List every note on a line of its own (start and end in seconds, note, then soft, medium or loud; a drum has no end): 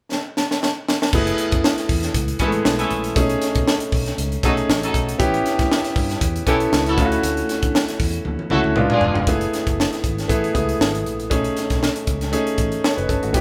0.12 snare medium
0.37 snare medium
0.51 snare medium
0.63 snare medium
0.88 snare loud
1.02 snare medium
1.13 1.31 F#1 medium
1.13 1.95 A3 medium
1.13 1.96 B3 medium
1.13 1.96 E4 medium
1.13 1.96 G#4 medium
1.13 kick loud
1.13 crash medium
1.27 closed hi-hat soft
1.38 closed hi-hat medium
1.52 1.60 F#2 medium
1.52 kick medium
1.52 closed hi-hat soft
1.64 snare loud
1.78 snare soft
1.78 closed hi-hat medium
1.89 2.07 E2 medium
1.89 kick medium
1.89 open hi-hat medium
2.03 snare soft
2.03 closed hi-hat soft
2.14 2.32 C#2 medium
2.14 kick medium
2.14 closed hi-hat medium
2.28 closed hi-hat soft
2.39 2.57 A1 medium
2.39 2.47 G#3 medium
2.39 3.03 B3 medium
2.39 2.49 C#4 medium
2.39 2.49 E4 medium
2.39 3.03 E4 medium
2.39 3.03 G#4 medium
2.39 2.49 A4 medium
2.39 kick medium
2.39 closed hi-hat medium
2.47 3.06 A3 medium
2.52 closed hi-hat medium
2.65 2.83 B1 medium
2.65 snare loud
2.78 3.14 C#4 medium
2.78 3.14 E4 medium
2.78 3.14 A4 medium
2.78 closed hi-hat medium
2.91 3.08 A#1 medium
2.91 closed hi-hat medium
3.04 closed hi-hat soft
3.16 3.34 B1 loud
3.16 3.98 A3 medium
3.16 3.99 C#4 medium
3.16 3.99 D#4 medium
3.16 3.99 G#4 medium
3.16 kick loud
3.16 closed hi-hat medium
3.29 closed hi-hat medium
3.42 snare soft
3.42 closed hi-hat medium
3.55 3.64 B2 medium
3.55 kick medium
3.55 closed hi-hat soft
3.68 snare medium
3.80 closed hi-hat medium
3.92 4.10 B1 medium
3.92 kick medium
3.92 open hi-hat medium
4.06 snare soft
4.06 closed hi-hat soft
4.18 4.35 C#2 loud
4.18 closed hi-hat medium
4.32 closed hi-hat soft
4.43 4.61 B1 medium
4.43 5.06 A3 medium
4.43 5.06 C#4 medium
4.43 4.52 D#4 medium
4.43 5.06 D#4 medium
4.43 4.52 F#4 medium
4.43 5.06 G#4 medium
4.43 4.53 A4 loud
4.43 kick medium
4.43 closed hi-hat medium
4.57 closed hi-hat soft
4.69 4.86 A1 medium
4.69 snare loud
4.83 5.18 D#4 medium
4.83 5.18 F#4 medium
4.83 5.18 A4 loud
4.83 closed hi-hat medium
4.94 5.12 B1 medium
4.94 kick medium
4.94 closed hi-hat medium
5.09 closed hi-hat medium
5.18 5.37 A1 loud
5.18 6.02 B3 medium
5.18 6.02 C#4 medium
5.18 6.02 E4 medium
5.18 6.02 G4 loud
5.18 kick loud
5.18 closed hi-hat medium
5.34 closed hi-hat soft
5.46 snare soft
5.46 closed hi-hat medium
5.59 5.67 A2 medium
5.59 kick medium
5.59 snare soft
5.59 closed hi-hat soft
5.71 snare medium
5.85 snare soft
5.85 closed hi-hat medium
5.96 6.14 G2 medium
5.96 kick medium
5.96 open hi-hat medium
6.10 snare soft
6.10 closed hi-hat soft
6.21 6.39 E2 medium
6.21 kick medium
6.21 closed hi-hat medium
6.36 closed hi-hat soft
6.46 6.64 B1 medium
6.46 6.98 B3 medium
6.46 6.96 C#4 medium
6.46 6.56 C#4 medium
6.46 6.55 E4 medium
6.46 6.97 E4 medium
6.46 6.55 G4 loud
6.46 6.98 A4 medium
6.46 kick medium
6.46 closed hi-hat medium
6.60 closed hi-hat soft
6.72 6.98 C#2 medium
6.72 snare loud
6.86 7.22 E4 medium
6.86 7.22 F#4 medium
6.86 7.22 A4 loud
6.86 closed hi-hat soft
6.98 7.15 D2 medium
6.98 7.80 A3 medium
6.98 7.80 C#4 medium
6.98 7.80 E4 medium
6.98 7.05 F4 medium
6.98 kick loud
6.98 closed hi-hat medium
7.05 7.84 F#4 medium
7.12 closed hi-hat soft
7.23 7.41 D2 loud
7.23 closed hi-hat medium
7.37 closed hi-hat soft
7.49 snare soft
7.49 closed hi-hat medium
7.62 7.71 D3 medium
7.62 kick medium
7.62 closed hi-hat medium
7.75 snare loud
7.88 snare soft
7.88 closed hi-hat medium
8.00 8.17 E2 medium
8.00 kick medium
8.00 open hi-hat medium
8.14 closed hi-hat soft
8.25 8.35 D2 medium
8.25 high tom medium
8.39 high tom soft
8.50 8.60 C#2 medium
8.50 8.76 A3 medium
8.50 8.76 C#4 medium
8.50 8.60 E4 medium
8.50 8.76 E4 medium
8.50 8.60 F#4 medium
8.50 8.76 F#4 medium
8.50 8.60 A4 loud
8.50 mid tom medium
8.64 8.73 D2 medium
8.64 mid tom medium
8.76 8.86 C#2 loud
8.76 9.18 G#3 medium
8.76 9.18 B3 medium
8.76 9.19 D4 medium
8.76 9.19 F4 medium
8.76 mid tom medium
8.90 9.25 D4 medium
8.90 9.25 F4 medium
8.90 9.26 G#4 loud
8.90 mid tom medium
9.01 9.10 E1 medium
9.01 floor tom medium
9.15 9.23 F1 medium
9.15 floor tom medium
9.27 9.45 F#1 medium
9.27 10.10 A3 medium
9.27 10.10 B3 medium
9.27 10.10 E4 medium
9.27 10.10 G#4 medium
9.27 kick loud
9.27 closed hi-hat medium
9.41 closed hi-hat soft
9.53 snare soft
9.53 closed hi-hat medium
9.67 9.84 F#1 medium
9.67 kick medium
9.67 closed hi-hat soft
9.80 snare medium
9.93 snare soft
9.93 closed hi-hat soft
10.04 10.21 G#1 medium
10.04 kick medium
10.04 closed hi-hat medium
10.18 snare soft
10.18 closed hi-hat soft
10.28 10.47 A1 medium
10.28 10.49 A3 medium
10.28 10.50 B3 medium
10.28 10.50 E4 medium
10.28 10.50 G#4 medium
10.28 kick medium
10.28 closed hi-hat medium
10.44 closed hi-hat soft
10.53 10.72 C#2 medium
10.53 11.16 A3 medium
10.53 11.17 B3 medium
10.53 11.17 E4 medium
10.53 11.17 G#4 medium
10.53 kick medium
10.53 closed hi-hat medium
10.69 closed hi-hat soft
10.79 11.05 G#1 medium
10.79 snare loud
10.95 closed hi-hat soft
11.05 11.31 A#1 medium
11.05 closed hi-hat medium
11.20 closed hi-hat soft
11.30 11.48 B1 medium
11.30 12.13 A3 medium
11.30 12.13 C#4 medium
11.30 12.13 D#4 medium
11.30 12.13 G#4 medium
11.30 kick loud
11.30 closed hi-hat medium
11.44 closed hi-hat soft
11.57 snare soft
11.57 closed hi-hat medium
11.70 11.88 B1 medium
11.70 kick medium
11.70 snare soft
11.70 closed hi-hat soft
11.83 snare medium
11.96 closed hi-hat medium
12.07 12.34 C#2 medium
12.07 kick medium
12.07 closed hi-hat medium
12.21 snare soft
12.21 closed hi-hat soft
12.32 12.53 A3 medium
12.32 12.53 C#4 medium
12.32 12.54 D#4 medium
12.32 12.54 G#4 loud
12.32 closed hi-hat medium
12.47 closed hi-hat soft
12.58 12.76 A1 medium
12.58 kick medium
12.58 closed hi-hat medium
12.72 closed hi-hat soft
12.84 12.97 C#5 medium
12.84 snare loud
12.97 13.05 F#1 medium
12.97 13.09 D#4 medium
12.97 13.08 B4 medium
12.97 closed hi-hat soft
13.09 13.19 G1 medium
13.09 13.22 C#4 medium
13.09 13.22 A4 medium
13.09 kick medium
13.09 closed hi-hat medium
13.23 13.34 G#1 medium
13.23 13.41 A3 soft
13.23 13.41 F#4 medium
13.23 closed hi-hat soft
13.33 13.41 A1 loud
13.33 13.41 B3 medium
13.33 13.41 C#4 medium
13.33 13.41 E4 medium
13.33 13.41 G4 medium
13.33 kick loud
13.33 closed hi-hat medium